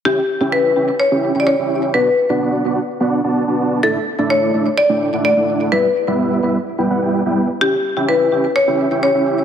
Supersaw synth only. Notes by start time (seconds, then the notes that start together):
0.05 C#4 E4 G4 E5 G5
0.41 C#4 E4 G4 E5 G5
0.76 C#4 E4 G4 E5 G5
1.12 C#4 E4 G4 E5 G5
1.35 C#4 E4 G4 E5 G5
1.59 C#4 E4 G4 E5 G5
1.94 B3 D4 F#4 D5 F#5
2.30 B3 D4 F#4 D5 F#5
2.65 B3 D4 F#4 D5 F#5
3.00 B3 D4 F#4 D5 F#5
3.24 B3 D4 F#4 D5 A5
3.48 B3 D4 F#4 D5 A5
3.83 A3 D4 E4 D5 E5
4.19 A3 D4 E4 D5 E5
4.54 A3 D4 E4 D5 E5
4.89 A3 D4 E4 D5 G5
5.13 A3 D4 E4 D5 F#5
5.37 A3 D4 E4 D5 F#5
5.72 G3 B3 E4 B4 E5
6.08 G3 B3 E4 B4 E5
6.43 G3 B3 E4 B4 E5
6.78 G3 B3 E4 B4 G5
6.90 G3 B3 E4 B4 F#5
7.02 G3 B3 E4 B4 G5
7.26 G3 B3 E4 B4 G5
7.61 C#4 E4 G4 E5 G5
7.97 C#4 E4 G4 E5 G5
8.32 C#4 E4 G4 E5 G5
8.67 C#4 E4 G4 E5 G5
8.91 C#4 E4 G4 E5 G5
9.15 C#4 E4 G4 E5 G5